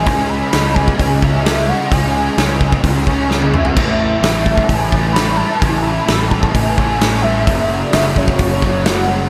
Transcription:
0.06 fingered electric bass C#2, distorted electric guitar C#3 G#3 C#4, soft synth lead G#5, kick, open hi-hat
0.29 soft synth lead B5
0.53 fingered electric bass C#2, distorted electric guitar C#3 G#3 C#4, snare, open hi-hat
0.74 soft synth lead G#5, kick
0.88 kick
0.99 fingered electric bass C#2, kick, open hi-hat
1.22 distorted electric guitar G#3 C#4, soft synth lead E5, kick
1.44 distorted electric guitar C#3 G#3 C#4, snare, open hi-hat
1.58 snare
1.67 distorted electric guitar G#3 C#4, soft synth lead F#5
1.91 fingered electric bass C#2, distorted electric guitar C#3 G#3 C#4, soft synth lead G#5, kick, open hi-hat
2.38 fingered electric bass C#2, distorted electric guitar C#3 G#3 C#4, snare, open hi-hat
2.61 kick
2.72 kick
2.83 fingered electric bass C#2, kick, open hi-hat
3.06 distorted electric guitar G#3 C#4, kick
3.29 distorted electric guitar C#3 G#3 C#4, snare
3.42 high tom
3.52 distorted electric guitar G#3 C#4, soft synth lead E5, mid tom
3.65 soft synth lead F#5, floor tom
3.76 fingered electric bass A1, distorted electric guitar A2 E3 A3, soft synth lead E5, kick, crash
4.00 soft synth lead E5
4.22 fingered electric bass A1, distorted electric guitar A2 E3 A3, snare, open hi-hat
4.46 kick
4.58 kick
4.68 fingered electric bass A1, soft synth lead G#5, kick, open hi-hat
4.92 distorted electric guitar E3 A3, kick
5.13 distorted electric guitar A2 E3 A3, soft synth lead B5, snare, open hi-hat
5.36 distorted electric guitar E3 A3, soft synth lead A5
5.60 fingered electric bass A1, distorted electric guitar A2 E3 A3, soft synth lead G#5, kick, open hi-hat
5.82 soft synth lead B5
6.08 fingered electric bass A1, distorted electric guitar A2 E3 A3, snare, open hi-hat
6.30 soft synth lead A5, kick
6.43 kick
6.54 fingered electric bass A1, soft synth lead G#5, kick, open hi-hat
6.77 distorted electric guitar E3 A3, kick
7.00 distorted electric guitar A2 E3 A3, snare, open hi-hat
7.14 snare
7.22 distorted electric guitar E3 A3, soft synth lead E5
7.34 soft synth lead E5
7.46 fingered electric bass F#1, distorted electric guitar F#2 C#3 F#3, soft synth lead E5, kick, open hi-hat
7.81 soft synth lead D5
7.92 fingered electric bass F#1, distorted electric guitar F#2 C#3 F#3, soft synth lead E5, snare, open hi-hat
8.16 soft synth lead C#5, kick
8.28 kick
8.39 fingered electric bass F#1, kick, open hi-hat
8.61 distorted electric guitar C#3 F#3, kick
8.85 distorted electric guitar F#2 C#3 F#3, soft synth lead F#5, snare, open hi-hat
9.08 distorted electric guitar C#3 F#3

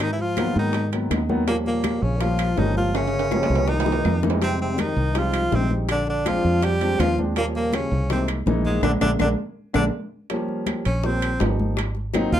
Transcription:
Already playing: fingered electric bass G#2
0.00 trombone D#3, tenor saxophone D#4, high bongo, high conga, high timbale, claves
0.11 trombone E3, tenor saxophone E4
0.19 trombone F3, tenor saxophone F4, high bongo, high conga
0.37 grand piano D#3 F#3 A#3 B3, high bongo, high conga, high timbale, claves
0.56 fingered electric bass G#2, trombone D#3, tenor saxophone D#4
0.73 high bongo, high conga, high timbale
0.92 grand piano D#3 F#3 A#3 B3, high bongo, high conga, high timbale
1.11 fingered electric bass D#2, grand piano D#5, high bongo, low bongo, high conga, high timbale, claves
1.29 grand piano D#3 F#3 A#3 B3 F#5, high bongo, high conga
1.47 trombone A#2, grand piano F3 G3 A#3 C#4, tenor saxophone A#3, high bongo, high conga, high timbale
1.65 trombone A#2, tenor saxophone A#3, high bongo, high conga
1.84 high bongo, high conga, high timbale, claves
2.02 fingered electric bass A#1, trombone C#3, tenor saxophone C#4, high conga
2.20 trombone F3, grand piano F3 G3 A#3 C#4, tenor saxophone F4, high bongo, high conga, high timbale
2.39 high bongo, high conga, high timbale, claves
2.57 fingered electric bass G1, trombone D#3, grand piano F3 G3 A#3 C#4, tenor saxophone D#4, high bongo, low bongo, high conga, low timbale
2.76 trombone F3, tenor saxophone F4, high bongo, high conga
2.94 trombone C#3, tenor saxophone C#4, high bongo, high timbale, claves
3.08 high timbale
3.14 high bongo, high conga
3.19 high timbale
3.31 grand piano F3 G3 A#3 C#4, high bongo, high conga, low timbale, claves
3.43 low timbale
3.50 fingered electric bass C2
3.55 low timbale
3.67 trombone D#3, tenor saxophone D#4, high bongo, high conga, low timbale
3.80 low timbale
3.86 grand piano E3 G#3 A#3 D#4, high bongo, high conga
3.92 low timbale
4.05 fingered electric bass F2, high conga, low timbale, claves
4.23 grand piano E3 G#3 A#3 D#4, low bongo, high conga
4.30 low timbale
4.41 trombone C3, grand piano G3 G#3 C4 D#4, tenor saxophone C4, high bongo, high conga, high timbale
4.59 trombone C3, tenor saxophone C4, high bongo, high conga
4.78 trombone D#3, tenor saxophone D#4, high bongo, high conga, high timbale, claves
4.97 fingered electric bass C2, high conga
5.15 trombone F3, grand piano G3 G#3 C4 D#4, tenor saxophone F4, high bongo, high conga, high timbale
5.33 high bongo, high conga, high timbale, claves
5.52 fingered electric bass A#1, trombone C3, grand piano G3 G#3 C4 D#4, tenor saxophone C4, high bongo, low bongo, high conga
5.70 high bongo, high conga
5.89 trombone D3, tenor saxophone D4, high bongo, high timbale, claves
6.07 trombone D3, tenor saxophone D4, high bongo, high conga
6.26 grand piano F3 G#3 C4 D4, trombone F3, tenor saxophone F4, high bongo, high conga, high timbale, claves
6.45 fingered electric bass F2
6.62 trombone G3, tenor saxophone G4, high bongo, high conga, high timbale
6.81 grand piano F3 G#3 C4 D4, high bongo, high conga, high timbale
6.99 fingered electric bass D#2, trombone F3, tenor saxophone F4, high bongo, low bongo, high conga, high timbale, low timbale, claves
7.18 grand piano F3 G#3 C4 D4, high bongo, high conga
7.36 trombone A#2, grand piano F3 G3 A#3 C#4, tenor saxophone A#3, high bongo, high conga, high timbale
7.55 trombone A#2, tenor saxophone A#3, high bongo, high conga
7.73 trombone C#3, tenor saxophone C#4, high bongo, high conga, high timbale, claves
7.91 fingered electric bass C2, high conga
8.10 trombone C3, grand piano E3 G#3 A#3 D#4, tenor saxophone C4, high bongo, high conga, high timbale
8.28 high bongo, high conga, high timbale, claves
8.46 fingered electric bass A#1, grand piano E3 G#3 A#3 D#4, high bongo, low bongo, high conga
8.65 trombone G#2, tenor saxophone G#3, high bongo, high conga
8.82 fingered electric bass A#1, trombone D3, grand piano G#3 A#3 D4, tenor saxophone D4, low bongo, high conga, high timbale, claves
9.01 fingered electric bass A#1, trombone D3, grand piano G#3 A#3 D4, tenor saxophone D4, low bongo, high conga, high timbale, claves
9.19 fingered electric bass A#1, trombone D3, grand piano G#3 A#3 D4, tenor saxophone D4, low bongo, high conga, high timbale, claves
9.74 fingered electric bass A#1, trombone D3, grand piano G#3 A#3 D4, tenor saxophone D4, low bongo, high conga, high timbale, claves
10.30 grand piano F3 G3 A#3 C#4, high bongo, high conga, high timbale
10.49 high conga
10.66 high bongo, high conga, high timbale, low timbale, claves
10.85 fingered electric bass A#1, tenor saxophone C#4, high conga, high timbale
11.04 grand piano F3 G3 A#3 C#4, tenor saxophone C4, high bongo, high conga
11.22 high conga, high timbale, claves
11.40 fingered electric bass G#1, grand piano F3 G3 A#3 D#4, high bongo, low bongo, high conga, high timbale, low timbale
11.59 high conga
11.77 high bongo, high conga, high timbale, claves
11.95 high bongo, high conga
12.14 grand piano F#3 A#3 C4 D#4, high bongo, high conga, high timbale, low timbale, claves
12.32 fingered electric bass D#2, tenor saxophone F4, high bongo

